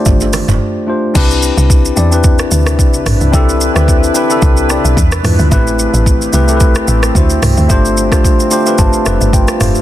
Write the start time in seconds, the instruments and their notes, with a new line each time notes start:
Already playing: tine electric piano A3 D4 F4 G4 C5 D5
0.06 log drum bass G1, kick, low conga, shaker
0.20 high bongo, shaker
0.33 cross-stick, open hi-hat, high bongo, low conga, shaker
0.48 log drum bass F1, mid tom, low bongo, shaker
0.87 tine electric piano A3 D4 F4 G4 C5
1.14 log drum bass C2, ambient pad C3 D4 E4 B4, tine electric piano C4 D4 E4 G4 B4, kick, crash, shaker
1.31 shaker
1.43 shaker
1.57 log drum bass C2, shaker
1.70 kick, shaker
1.85 shaker
1.96 log drum bass E2, tine electric piano C4 D4 E4 G4 D5, shaker
2.11 tine electric piano C4 D4 E4 G4 B4, shaker
2.24 kick, shaker
2.39 cross-stick, shaker
2.51 log drum bass D2, shaker
2.67 cross-stick, shaker
2.79 log drum bass B1, kick, shaker
2.94 shaker
3.06 log drum bass A1, cross-stick, mid tom, open hi-hat, shaker
3.21 log drum bass C2, shaker
3.32 log drum bass C2, tine electric piano C4 D4 E4 G4 A4, kick, shaker
3.49 shaker
3.61 shaker
3.74 log drum bass D2, tine electric piano C4 D4 E4 G4 B4, cross-stick, shaker
3.88 kick, shaker
4.04 shaker
4.14 tine electric piano C4 D4 E4 G4 B4, shaker
4.29 tine electric piano C4 D4 E4 G4 A4, shaker
4.42 log drum bass C2, kick, shaker
4.57 shaker
4.68 tine electric piano C4 D4 E4 G4 D5, cross-stick, shaker
4.85 log drum bass B1, shaker
4.97 log drum bass E2, kick, shaker
5.12 cross-stick, shaker
5.23 log drum bass E2, tine electric piano G#3 D4 E4 F4 B4, cross-stick, mid tom, open hi-hat, shaker
5.39 log drum bass D2, shaker
5.50 log drum bass A1, tine electric piano A3 C4 E4 G4 B4, ambient pad A3 C4 G4, kick, shaker
5.67 shaker
5.79 shaker
5.94 log drum bass A1, shaker
6.06 kick, shaker
6.22 shaker
6.32 log drum bass C2, tine electric piano A3 C4 E4 G4 B4, shaker
6.47 tine electric piano A3 C4 E4 G4 A4, shaker
6.57 tine electric piano B4, shaker
6.61 kick
6.75 cross-stick, shaker
6.88 log drum bass A1, shaker
7.03 cross-stick, shaker
7.14 log drum bass D2, tine electric piano A3 D4 E4 F#4 C5, kick, shaker
7.30 shaker
7.42 log drum bass C2, cross-stick, mid tom, open hi-hat, shaker
7.57 log drum bass D2, shaker
7.68 log drum bass G1, ambient pad G3 C4 F4, tine electric piano A3 D4 F4 G4 C5, kick, shaker
7.85 shaker
7.97 shaker
8.11 log drum bass A1, tine electric piano A3 D4 F4 G4 C5, kick, cross-stick, shaker
8.24 kick, shaker
8.40 shaker
8.50 tine electric piano A3 D4 F4 G4 C5 C6, shaker
8.65 tine electric piano A3 D4 F4 G4 B4, shaker
8.78 log drum bass G1, tine electric piano A5, kick, shaker
8.93 shaker
9.05 log drum bass F1, tine electric piano A3 D4 F4 G4 B4, cross-stick, shaker
9.21 log drum bass G1, shaker
9.33 log drum bass G1, tine electric piano G5, kick, shaker
9.48 cross-stick, shaker
9.59 log drum bass F1, tine electric piano A3 D4 F4 G4 C5 F5, cross-stick, mid tom, open hi-hat, shaker
9.75 shaker